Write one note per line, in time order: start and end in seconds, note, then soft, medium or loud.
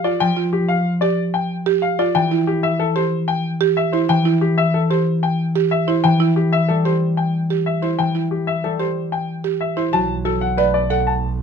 0.00 0.19 F3 medium
0.04 0.25 F4 soft
0.04 0.25 D5 soft
0.20 2.16 F3 medium
0.20 0.41 G5 medium
0.37 0.58 F4 soft
0.53 0.74 G4 medium
0.69 0.90 F5 medium
1.01 1.23 G4 medium
1.01 1.22 D5 medium
1.34 1.55 G5 medium
1.66 1.87 G4 medium
1.82 2.03 F5 medium
1.99 2.20 F4 soft
1.99 2.20 D5 medium
2.15 4.08 E3 medium
2.15 2.36 G5 medium
2.31 2.52 E4 medium
2.47 2.68 G4 medium
2.63 2.84 E5 medium
2.80 3.01 A4 medium
2.96 3.17 G4 medium
2.96 3.17 C5 medium
3.28 3.49 G5 medium
3.61 3.82 G4 medium
3.77 3.98 E5 medium
3.92 4.14 E4 medium
3.92 4.14 C5 soft
4.09 6.03 E3 medium
4.09 4.30 G5 medium
4.25 4.47 E4 medium
4.41 4.63 G4 medium
4.58 4.79 E5 medium
4.74 4.95 A4 soft
4.90 5.12 G4 medium
4.90 5.11 C5 soft
5.23 5.44 G5 soft
5.56 5.76 G4 medium
5.71 5.92 E5 medium
5.88 6.09 E4 medium
5.88 6.09 C5 soft
6.04 7.97 E3 medium
6.04 6.25 G5 medium
6.20 6.41 E4 medium
6.36 6.57 G4 soft
6.53 6.74 E5 medium
6.69 8.63 G3 soft
6.69 6.90 A4 soft
6.85 7.06 G4 soft
6.85 7.06 C5 soft
7.17 7.38 G5 soft
7.50 7.71 G4 medium
7.66 7.87 E5 soft
7.82 8.03 E4 soft
7.82 8.03 C5 soft
7.99 9.94 E3 medium
7.99 8.20 G5 medium
8.15 8.36 E4 soft
8.31 8.52 G4 soft
8.47 8.68 E5 medium
8.64 9.95 G3 soft
8.64 8.85 A4 soft
8.79 9.01 G4 soft
8.79 9.01 C5 soft
9.12 9.33 G5 soft
9.44 9.65 G4 medium
9.61 9.82 E5 soft
9.77 9.98 E4 soft
9.77 9.98 C5 soft
9.93 11.43 B1 soft
9.93 11.43 F#3 medium
9.93 10.14 F#4 soft
9.93 10.14 A5 medium
10.25 10.46 F#4 soft
10.25 10.46 A4 medium
10.41 10.63 F#5 medium
10.57 11.43 A3 soft
10.57 10.79 B4 soft
10.57 10.79 D5 medium
10.74 10.95 D5 soft
10.90 11.11 A4 soft
10.90 11.11 F#5 medium
11.07 11.28 A5 soft